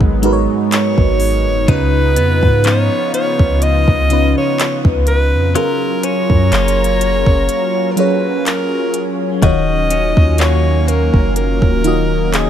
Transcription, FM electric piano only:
0.22 G#3 D#4 F#4 A#4
0.26 B4
0.33 C#5
1.67 C#3 C#4 D#4 F4 B4
4.09 C#3 C#4 D#4 F4 B4
5.54 F#3 C#4 F4 G#4 A#4
7.96 F#3 C#4 F4 G#4 C#5
9.41 D#3 D#4 F4 F#4
9.45 C#5
11.83 D#3 D#4 F4 F#4 D#5

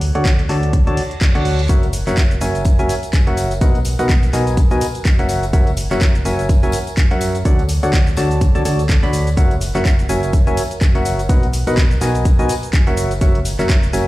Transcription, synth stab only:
0.15 F#4 A4 C#5 D5 F#5
0.49 F#4 A4 C#5 D5 A5
0.87 F#4 A4 C#5 D5 A5
1.35 F#4 A4 C#5 D5 F#5
1.69 F#4 A#4 C#5 E5 F#5
2.07 F#4 A#4 C#5 E5 F#5
2.41 F#4 A#4 C#5 E5 G#5
2.79 F#4 A#4 C#5 E5 G#5
3.27 F#4 A#4 C#5 E5 F#5
3.61 F#4 A#4 B4 D#5 F#5
3.99 F#4 A#4 B4 D#5 F#5
4.33 F#4 A#4 B4 D#5 G#5
4.71 F#4 A#4 B4 D#5 G#5
5.19 F#4 A#4 C#5 E5 F#5
5.53 F#4 A#4 C#5 E5 F#5
5.91 F#4 A#4 C#5 E5 F#5
6.25 F#4 A#4 C#5 E5 G#5
6.63 F#4 A#4 C#5 E5 G#5
7.11 F#4 A#4 C#5 E5 F#5
7.45 F#4 A4 C#5 D5 F#5
7.83 F#4 A4 C#5 D5 F#5
8.17 F#4 A4 C#5 D5 A5
8.55 F#4 A4 C#5 D5 A5
8.65 F#4 A4 C#5 D5 A5
9.03 F#4 A4 C#5 D5 B5
9.37 F#4 A#4 C#5 E5 F#5
9.75 F#4 A#4 C#5 E5 F#5
10.09 F#4 A#4 C#5 E5 G#5
10.47 F#4 A#4 C#5 E5 G#5
10.95 F#4 A#4 C#5 E5 F#5
11.29 F#4 A#4 B4 D#5 F#5
11.67 F#4 A#4 B4 D#5 F#5
12.01 F#4 A#4 B4 D#5 G#5
12.39 F#4 A#4 B4 D#5 G#5
12.87 F#4 A#4 C#5 E5 F#5
13.21 F#4 A#4 C#5 E5 F#5
13.59 F#4 A#4 C#5 E5 F#5
13.93 F#4 A#4 C#5 E5 G#5

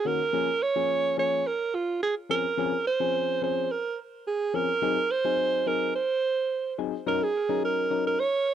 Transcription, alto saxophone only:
0.07 A#4
0.63 C#5
1.19 C#5
1.47 A#4
1.75 F4
2.03 G#4
2.31 A#4
2.87 C5
3.43 C5
3.71 A#4
4.27 G#4
4.55 A#4
5.11 C5
5.67 A#4
5.95 C5
7.08 A#4
7.23 G#4
7.65 A#4
8.07 A#4
8.20 C#5

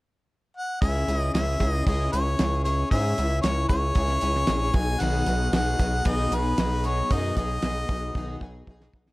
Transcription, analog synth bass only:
0.82 C#2
1.08 C#2
1.34 C#2
1.60 C#2
1.86 C#2
2.13 C#2
2.40 C#2
2.92 G#2
3.18 C#2
3.44 C#2
3.70 C#2
3.95 C#2
4.22 C#2
4.49 A#1
4.74 B1
5.01 B1
5.27 B1
5.53 B1
5.79 B1
6.05 B1
6.31 B1
6.58 B1
7.11 F#2
7.36 B1
7.63 B1
7.89 B1
8.15 B1
8.41 B1
8.67 B1
8.93 B1

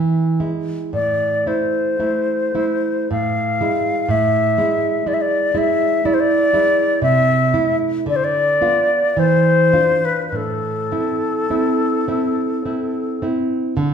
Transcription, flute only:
0.94 D5
1.48 C5
3.12 F5
4.11 E5
5.08 D5
5.14 E5
5.22 D5
5.58 E5
6.06 D5
6.14 C5
6.20 D5
7.03 E5
8.10 D5
8.16 C5
8.24 D5
9.19 C5
10.05 B4
10.28 B4
10.36 A4

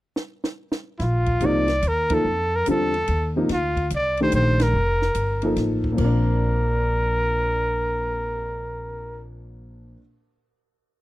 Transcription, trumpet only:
0.98 E4 F4
1.46 D5
1.88 A#4
2.14 A4
2.56 A#4
2.70 A4
3.53 F4
3.95 D5
4.23 C5
4.35 C5
4.62 A#4
6.00 A#4

